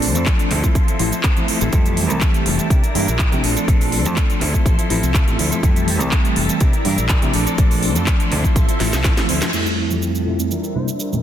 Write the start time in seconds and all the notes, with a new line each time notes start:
Already playing: A#1 F3 A3 C4 D4 A4 D5 C6
0.02 open hi-hat, tambourine
0.14 F2 F3 A3 C4 D4 A4, closed hi-hat, tambourine, high conga, shaker
0.26 F3 C4 D4 A4, kick, clap, closed hi-hat, shaker
0.39 closed hi-hat, tambourine, shaker
0.50 D2 F3 C4 E4 A4 E5, clap, open hi-hat, tambourine, low conga
0.63 F3 A3 C4 E4, kick, closed hi-hat, shaker
0.75 kick, closed hi-hat, tambourine, high conga, shaker
0.88 C4 E4 A4, closed hi-hat, tambourine, shaker
0.99 A1 F3 A3 C4 E4 A4, open hi-hat, tambourine
1.12 closed hi-hat, tambourine, shaker
1.23 F3 C4 E4 A4, kick, clap, closed hi-hat, shaker
1.37 F3 A3 C4 E4, closed hi-hat, tambourine, high conga, shaker
1.48 F3 C4 E4 A4, muted fingered electric bass stroke, open hi-hat, tambourine
1.61 A1 C4 E4 A4, closed hi-hat, tambourine, low conga, shaker
1.72 F2 E3 G3 A3 C4 E4 G4 A4 A5, kick, closed hi-hat, tambourine, shaker
1.86 closed hi-hat, tambourine, shaker
1.97 open hi-hat, tambourine
2.10 C2 E3 G3 A3 C4 E4 A4, closed hi-hat, tambourine, high conga, shaker
2.21 G3 C4 E4 A4, kick, clap, closed hi-hat, shaker
2.34 closed hi-hat, tambourine, shaker
2.45 F1, open hi-hat, tambourine, low conga
2.58 E3 G3 A3 C4, closed hi-hat, tambourine, shaker
2.70 C3 D4 E4 A#4 D5 A#5, kick, closed hi-hat, tambourine, high conga, shaker
2.83 D4 E4 A#4, closed hi-hat, tambourine, shaker
2.94 G2 E3 G3 A#3 D4 E4 A#4, open hi-hat, tambourine, low conga
3.07 A#1, closed hi-hat, tambourine, shaker
3.19 kick, clap, closed hi-hat, shaker
3.31 C3 F3 A3 C4 D4, closed hi-hat, tambourine, high conga, low conga, shaker
3.43 A#1 F3 C4 D4 A4 C6, open hi-hat, tambourine
3.56 C4 D4 A4, closed hi-hat, tambourine, shaker
3.68 A#1 F3 A3 C4 D4 A4, kick, closed hi-hat, shaker
3.80 open hi-hat, tambourine, shaker
3.92 open hi-hat, tambourine
4.05 F2 F3 A3 C4 D4 A4, closed hi-hat, tambourine, high conga, shaker
4.16 F3 C4 D4 A4, kick, clap, closed hi-hat, tambourine, shaker
4.30 closed hi-hat, tambourine, shaker
4.41 D2 F3 C4 E4 A4 E5, clap, open hi-hat, tambourine, low conga
4.54 F3 A3 C4 E4, kick, closed hi-hat, tambourine, shaker
4.66 A1, kick, closed hi-hat, tambourine, high conga, shaker
4.78 C4 E4 A4, closed hi-hat, tambourine, shaker
4.89 A1 F3 A3 C4 E4 A4, open hi-hat, tambourine
5.03 C2, closed hi-hat, tambourine, shaker
5.14 C4 E4, kick, clap, closed hi-hat, shaker
5.27 A1 F3 A3 C4 E4, closed hi-hat, tambourine, high conga, shaker
5.38 D2 F3 C4 E4 A4, open hi-hat, tambourine
5.51 C4 E4 A4, closed hi-hat, tambourine, low conga, shaker
5.63 F2 E3 G3 A3 C4 E4 G4 A4 A5, kick, closed hi-hat, tambourine, shaker
5.76 closed hi-hat, tambourine, shaker
5.88 open hi-hat, tambourine
6.00 C2 E3 G3 A3 C4 E4 A4, closed hi-hat, tambourine, high conga, shaker
6.11 G3 C4 E4 A4, kick, clap, closed hi-hat, shaker
6.25 closed hi-hat, tambourine, shaker
6.36 F1, open hi-hat, tambourine, low conga
6.49 E3 G3 A3 C4, closed hi-hat, tambourine, shaker
6.60 C3 G3 D4 E4 A#4 D5 A#5, kick, closed hi-hat, tambourine, high conga, shaker
6.73 D4 E4 A#4, closed hi-hat, tambourine, shaker
6.84 G2 E3 G3 A#3 D4 E4 A#4, open hi-hat, tambourine, low conga
6.97 A#1, closed hi-hat, tambourine, shaker
7.09 D4 E4 A#4, kick, clap, closed hi-hat, shaker
7.22 C3 F3 A3 C4 D4 E4 A#4, closed hi-hat, tambourine, high conga, low conga, shaker
7.33 A#1 F3 C4 D4 A4 C6, open hi-hat, tambourine
7.46 C4 D4 A4, closed hi-hat, tambourine, shaker
7.58 A#1 F3 A3 C4 D4 A4, kick, closed hi-hat, shaker
7.71 open hi-hat, tambourine, shaker
7.83 open hi-hat, tambourine
7.95 F2 F3 A3 C4 D4 A4, closed hi-hat, tambourine, high conga, shaker
8.07 F3 D4 A4, kick, clap, closed hi-hat, shaker
8.20 closed hi-hat, tambourine, shaker
8.31 D2 F3 C4 E4 A4 E5, clap, open hi-hat, tambourine, low conga
8.44 F3 A3 C4 E4, kick, closed hi-hat, tambourine, shaker
8.56 A1, kick, closed hi-hat, tambourine, high conga, shaker
8.68 C4 E4 A4, closed hi-hat, tambourine, shaker
8.79 A1 F3 A3 C4 E4 A4, snare, open hi-hat, tambourine
8.93 C2, snare, closed hi-hat, tambourine, shaker
9.04 A1 F3 C4 E4 A4, kick, snare, clap, closed hi-hat, shaker
9.17 F3 A3 C4 E4 A4, snare, closed hi-hat, tambourine, high conga, shaker
9.28 D2 F3 C4 E4 A4, open hi-hat, tambourine
9.41 C4 E4 A4, snare, tambourine, low conga, shaker
9.53 F2 F3 G3 A3 C4 E4 A4 E5 G5, tambourine, crash, shaker
9.66 shaker
9.77 C4 E4 A4
9.90 F2 G3 A3 C4 E4 D5, tambourine, high conga, shaker
10.02 tambourine, shaker
10.15 shaker
10.27 tambourine, low conga
10.39 F2 G3 A3 C4 E4, shaker
10.50 G3 D4 E4 A#4 C5 E5, tambourine, high conga, shaker
10.64 tambourine, shaker
10.75 C3 G3 A#3 D4 E4 C5, tambourine, low conga
10.88 tambourine, shaker
10.99 G3 D4 E4 A#4, shaker
11.12 A#2 F3 A3 C4 D4, tambourine, high conga, low conga, shaker